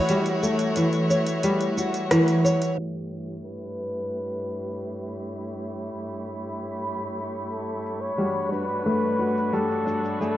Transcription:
0.00 0.76 E3 medium
0.00 0.42 A3 medium
0.00 2.75 A3 medium
0.00 2.74 E4 medium
0.00 1.76 F#4 medium
0.00 2.75 F#4 medium
0.00 1.09 C#5 medium
0.00 2.75 C#5 medium
0.09 1.43 G3 medium
0.09 closed hi-hat medium
0.09 shaker soft
0.26 closed hi-hat soft
0.26 shaker soft
0.43 3.36 A3 medium
0.43 shaker medium
0.59 closed hi-hat soft
0.59 shaker soft
0.76 2.11 E3 medium
0.76 closed hi-hat medium
0.76 shaker soft
0.93 closed hi-hat soft
0.93 shaker soft
1.10 2.44 C#5 medium
1.10 shaker medium
1.27 closed hi-hat soft
1.27 shaker soft
1.43 3.36 G3 medium
1.43 closed hi-hat medium
1.43 shaker soft
1.61 closed hi-hat soft
1.61 shaker soft
1.77 2.85 F#4 medium
1.77 shaker medium
1.94 closed hi-hat soft
1.94 shaker soft
2.11 3.36 E3 medium
2.11 cross-stick medium
2.11 closed hi-hat medium
2.11 shaker soft
2.28 closed hi-hat soft
2.28 shaker soft
2.45 3.35 C#5 medium
2.45 shaker medium
2.62 closed hi-hat soft
2.62 shaker soft
2.79 8.14 G2 medium
2.79 10.37 A3 medium
2.79 8.14 E4 medium
2.79 8.14 G4 medium
2.79 10.37 C#5 medium
2.79 10.37 B5 medium
3.13 shaker medium
3.45 5.10 B4 loud
4.48 shaker medium
4.82 shaker soft
5.16 shaker medium
5.33 shaker soft
5.50 shaker soft
5.67 shaker soft
5.83 shaker medium
6.00 shaker soft
6.17 shaker soft
6.34 shaker soft
6.51 shaker medium
6.68 shaker soft
6.85 shaker soft
7.01 shaker soft
7.19 shaker medium
7.35 shaker soft
7.51 8.02 A4 medium
7.51 shaker soft
7.69 shaker soft
7.86 shaker medium
8.01 8.52 C#5 medium
8.01 shaker soft
8.18 10.37 G2 medium
8.18 9.52 G3 medium
8.18 10.37 D4 medium
8.18 10.37 F#4 medium
8.18 9.18 F#4 medium
8.18 shaker soft
8.37 shaker soft
8.52 9.85 D4 soft
8.52 9.55 B4 medium
8.52 shaker medium
8.70 shaker soft
8.86 10.20 A3 medium
8.86 shaker soft
9.04 shaker soft
9.19 10.37 F#4 medium
9.37 shaker medium
9.53 10.37 G3 medium
9.53 10.20 A4 medium
9.53 shaker soft
9.71 shaker soft
9.87 10.37 D4 medium
9.87 shaker medium
10.05 shaker soft
10.21 10.37 A3 medium
10.21 10.37 A4 medium
10.21 shaker soft

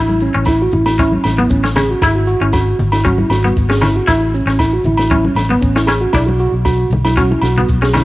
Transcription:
0.00 0.28 A1 medium
0.00 0.15 E4 medium
0.00 0.20 E4 medium
0.08 high conga medium
0.08 maracas soft
0.20 0.46 C#4 medium
0.20 maracas medium
0.33 0.67 A1 medium
0.33 0.55 C#4 medium
0.33 maracas soft
0.45 0.61 E4 medium
0.45 kick medium
0.45 snare medium
0.45 low agogo medium
0.45 maracas medium
0.59 0.73 F#4 medium
0.59 maracas soft
0.71 1.16 A1 medium
0.71 0.98 E4 medium
0.71 low conga medium
0.71 maracas medium
0.85 snare medium
0.85 low agogo medium
0.85 maracas soft
0.97 1.20 C#4 medium
0.97 1.12 E4 medium
0.97 kick medium
0.97 snare soft
0.97 high conga medium
0.97 maracas medium
1.12 1.37 C#4 medium
1.12 high conga medium
1.12 maracas soft
1.23 1.46 A1 medium
1.23 snare medium
1.23 low agogo medium
1.23 maracas medium
1.37 1.50 B3 medium
1.37 1.59 B3 medium
1.37 high conga medium
1.37 maracas soft
1.50 1.93 A1 medium
1.50 1.63 C#4 medium
1.50 kick medium
1.50 maracas medium
1.64 1.74 C#4 medium
1.64 snare medium
1.75 1.97 C#4 medium
1.75 1.89 G#4 medium
1.75 snare medium
1.75 low conga medium
1.75 low agogo medium
1.75 maracas medium
1.89 2.02 F#4 medium
1.89 maracas soft
2.02 2.34 G#1 medium
2.02 2.15 E4 medium
2.02 2.23 E4 medium
2.02 kick loud
2.02 snare medium
2.02 low agogo medium
2.02 maracas medium
2.15 2.26 F#4 medium
2.15 maracas soft
2.27 2.40 F#4 medium
2.27 maracas medium
2.41 2.72 G#1 medium
2.41 2.62 C#4 medium
2.41 2.52 E4 medium
2.41 maracas soft
2.52 2.78 F#4 medium
2.52 kick medium
2.52 snare medium
2.52 low agogo medium
2.52 maracas medium
2.67 maracas soft
2.79 3.22 G#1 medium
2.79 low conga medium
2.79 maracas medium
2.92 3.04 E4 medium
2.92 snare medium
2.92 low agogo medium
2.92 maracas soft
3.05 3.25 C#4 medium
3.05 3.18 F#4 medium
3.05 kick medium
3.05 high conga medium
3.05 maracas medium
3.18 3.30 E4 medium
3.18 high conga medium
3.18 maracas soft
3.30 3.51 G#1 medium
3.30 3.55 F#4 medium
3.30 snare medium
3.30 low agogo medium
3.30 maracas medium
3.44 3.65 B3 medium
3.44 high conga medium
3.44 maracas soft
3.56 3.99 G#1 medium
3.56 kick medium
3.56 maracas medium
3.69 3.80 C#4 medium
3.69 3.81 G#4 medium
3.69 snare medium
3.81 4.03 C#4 medium
3.81 3.95 E4 medium
3.81 snare medium
3.81 low conga medium
3.81 low agogo medium
3.81 maracas medium
3.96 4.07 F#4 medium
3.96 maracas soft
4.07 4.41 A1 medium
4.07 4.28 E4 medium
4.07 4.33 E4 medium
4.07 kick loud
4.07 snare medium
4.07 low agogo medium
4.07 maracas medium
4.23 maracas soft
4.34 4.59 C#4 medium
4.34 maracas medium
4.46 4.78 A1 medium
4.46 4.68 C#4 medium
4.46 snare soft
4.46 maracas soft
4.59 4.72 E4 medium
4.59 kick medium
4.59 snare medium
4.59 low agogo medium
4.59 maracas medium
4.73 4.85 F#4 medium
4.73 maracas soft
4.84 5.27 A1 medium
4.84 5.09 E4 medium
4.84 low conga medium
4.84 maracas medium
4.97 snare medium
4.97 low agogo medium
4.97 maracas soft
5.09 5.32 C#4 medium
5.09 5.24 E4 medium
5.09 kick medium
5.09 high conga medium
5.09 maracas medium
5.23 5.49 C#4 medium
5.23 high conga medium
5.23 maracas soft
5.35 5.57 A1 medium
5.35 snare medium
5.35 low agogo medium
5.35 maracas medium
5.49 5.61 B3 medium
5.49 5.71 B3 medium
5.49 high conga medium
5.49 maracas soft
5.62 6.05 A1 medium
5.62 5.75 C#4 medium
5.62 kick medium
5.62 maracas medium
5.76 5.86 C#4 medium
5.76 5.87 E4 medium
5.76 snare medium
5.87 6.09 C#4 medium
5.87 6.00 G#4 medium
5.87 snare medium
5.87 low agogo medium
5.87 maracas medium
6.01 6.13 F#4 medium
6.01 maracas soft
6.13 6.46 B1 medium
6.13 6.35 D4 medium
6.13 6.26 E4 medium
6.13 kick medium
6.13 snare medium
6.13 low agogo medium
6.13 maracas medium
6.26 6.38 F#4 medium
6.26 high conga medium
6.26 maracas soft
6.39 6.53 F#4 medium
6.39 maracas medium
6.52 6.84 B1 medium
6.52 maracas soft
6.65 6.90 F#4 medium
6.65 kick medium
6.65 snare medium
6.65 low agogo medium
6.65 maracas medium
6.78 maracas soft
6.90 7.33 B1 medium
6.90 high conga medium
6.90 low conga medium
6.90 maracas medium
7.04 7.16 E4 medium
7.04 snare medium
7.04 low agogo medium
7.04 maracas soft
7.16 7.38 C#4 medium
7.16 7.30 F#4 medium
7.16 kick medium
7.16 snare soft
7.16 high conga medium
7.16 maracas medium
7.31 7.42 E4 medium
7.31 high conga medium
7.31 maracas soft
7.42 7.64 B1 medium
7.42 7.68 F#4 medium
7.42 snare medium
7.42 low agogo medium
7.42 maracas medium
7.56 7.78 B3 medium
7.56 high conga medium
7.56 low conga medium
7.56 maracas soft
7.68 8.04 B1 medium
7.68 kick medium
7.68 maracas medium
7.82 7.92 C#4 medium
7.82 7.94 G#4 medium
7.82 snare medium
7.82 maracas soft
7.94 8.04 C#4 medium
7.94 8.04 E4 medium
7.94 snare medium
7.94 low conga medium
7.94 low agogo medium
7.94 maracas medium

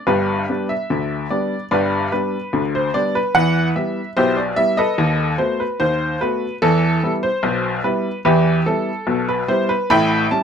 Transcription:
0.07 0.42 G1 medium
0.07 0.42 G2 medium
0.07 0.48 D4 medium
0.07 0.66 G4 medium
0.07 0.66 B4 medium
0.49 0.72 G3 soft
0.49 0.72 B3 soft
0.49 0.72 D4 soft
0.69 1.28 E5 medium
0.90 1.25 D2 medium
0.90 1.25 D3 medium
1.30 1.53 G3 soft
1.30 1.53 B3 soft
1.30 1.54 D4 soft
1.30 1.63 D5 medium
1.71 2.06 G1 medium
1.71 2.06 G2 medium
1.71 2.10 G4 medium
1.71 2.10 B4 medium
1.71 2.10 D5 medium
2.12 2.35 G3 soft
2.12 2.35 B3 soft
2.12 2.35 D4 soft
2.12 2.61 B4 medium
2.53 2.88 D2 medium
2.53 2.88 D3 medium
2.75 2.95 C5 medium
2.94 3.17 G3 soft
2.94 3.17 B3 soft
2.94 3.17 D4 soft
2.94 3.15 D5 medium
3.15 3.34 B4 medium
3.35 3.70 E2 medium
3.35 3.70 E3 medium
3.35 3.74 B4 medium
3.35 3.68 F#5 loud
3.76 3.98 G3 soft
3.76 3.99 B3 soft
3.76 3.99 E4 soft
3.76 4.09 E5 medium
4.17 4.52 B1 medium
4.17 4.52 B2 medium
4.17 4.36 E4 medium
4.17 4.36 G4 medium
4.17 4.37 C5 medium
4.37 4.57 D5 medium
4.56 4.80 G3 soft
4.56 4.80 B3 soft
4.56 4.80 E4 soft
4.56 4.77 E5 medium
4.77 5.36 A4 medium
4.77 5.35 B4 medium
4.77 5.27 D#5 medium
4.98 5.33 D#2 medium
4.98 5.33 D#3 medium
5.38 5.61 A3 soft
5.38 5.61 B3 soft
5.38 5.62 F#4 soft
5.38 5.59 C5 medium
5.60 5.80 B4 medium
5.80 6.15 D#2 medium
5.80 6.15 D#3 medium
5.80 6.19 C5 medium
6.21 6.44 A3 soft
6.21 6.44 B3 soft
6.21 6.45 F#4 medium
6.21 6.54 B4 medium
6.62 6.97 E2 medium
6.62 6.97 E3 medium
6.62 7.11 A4 loud
7.03 7.25 G3 soft
7.03 7.26 B3 soft
7.03 7.26 E4 soft
7.23 7.72 C5 medium
7.43 7.78 B1 medium
7.43 7.78 B2 medium
7.84 8.07 G3 soft
7.84 8.07 B3 soft
7.84 8.07 E4 soft
7.84 8.17 B4 medium
8.25 8.60 E2 medium
8.25 8.60 E3 medium
8.25 8.64 E4 medium
8.25 8.64 G4 medium
8.25 8.58 B4 medium
8.66 8.89 G3 soft
8.66 8.89 B3 soft
8.66 8.89 E4 soft
8.66 9.24 A4 medium
9.07 9.42 B1 medium
9.07 9.42 B2 medium
9.29 9.49 B4 medium
9.48 9.71 G3 medium
9.48 9.71 B3 soft
9.48 9.71 E4 medium
9.48 9.69 C5 medium
9.69 9.89 B4 medium
9.90 10.24 A1 medium
9.90 10.24 A2 medium
9.90 10.28 E5 medium
9.90 10.28 G5 medium
9.90 10.22 B5 loud
10.31 10.43 G3 soft
10.31 10.43 C#4 soft
10.31 10.43 E4 soft
10.31 10.43 A5 medium

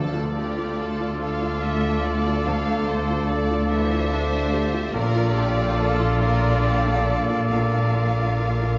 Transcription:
0.00 2.42 D2 medium
0.00 4.89 D2 medium
0.00 1.17 D3 loud
0.00 4.90 A3 medium
0.00 4.89 D4 medium
0.00 3.66 F4 medium
0.00 0.35 A4 medium
0.00 4.89 A4 medium
0.00 1.17 D5 medium
0.00 4.90 D5 medium
0.00 4.89 F5 medium
0.14 0.50 F4 medium
0.35 0.80 G4 medium
0.35 0.71 A4 medium
0.57 0.92 F4 medium
0.80 1.13 A4 medium
0.80 1.22 A4 medium
1.00 1.33 F4 medium
1.21 1.55 A4 medium
1.21 3.67 A4 medium
1.21 1.62 F5 medium
1.42 1.75 F4 medium
1.63 1.96 A4 medium
1.63 2.05 E5 medium
1.85 2.18 A3 medium
2.05 2.39 A4 medium
2.05 2.47 D5 medium
2.27 2.59 F4 medium
2.46 4.90 D2 medium
2.46 2.88 F5 medium
2.68 3.01 A3 medium
2.88 3.22 A4 medium
2.88 3.29 C5 medium
3.09 3.42 F4 medium
3.28 3.63 A4 medium
3.28 3.70 D5 medium
3.51 3.83 F4 medium
3.70 4.11 E3 loud
3.70 4.04 A4 medium
3.70 4.94 C5 medium
3.70 4.93 E5 medium
3.94 4.25 F4 medium
4.12 4.53 D4 medium
4.12 4.45 A4 medium
4.33 4.65 A3 medium
4.53 4.94 G4 medium
4.53 4.86 A4 medium
4.74 4.94 F4 medium
4.93 7.47 A#1 medium
4.93 8.79 A#1 loud
4.93 8.79 A#2 loud
4.93 8.79 A#3 loud
4.93 8.79 D4 medium
4.93 7.50 F4 loud
4.93 8.79 A4 medium
4.93 5.35 A#4 loud
4.93 6.19 D5 loud
4.93 8.79 D5 medium
4.93 8.79 F5 loud
5.15 5.49 F4 medium
5.35 5.78 G4 medium
5.35 5.70 A4 medium
5.57 5.91 D5 medium
5.77 6.20 A4 medium
5.77 6.12 A4 medium
6.00 6.20 F4 medium
6.19 6.56 F4 medium
6.19 6.62 A#4 medium
6.19 7.48 D5 medium
6.43 6.77 D5 medium
6.63 7.07 G4 medium
6.63 6.99 A4 medium
6.86 7.20 D4 medium
7.07 7.42 A4 medium
7.07 7.51 A4 medium
7.29 7.64 F4 medium
7.50 8.79 A#1 medium
7.50 8.79 F4 medium
7.50 8.79 A#4 medium
7.50 8.79 F5 medium
7.75 8.09 D4 soft
7.95 8.30 F4 medium
8.18 8.53 D5 medium
8.39 8.60 F4 soft
8.62 8.79 F4 soft

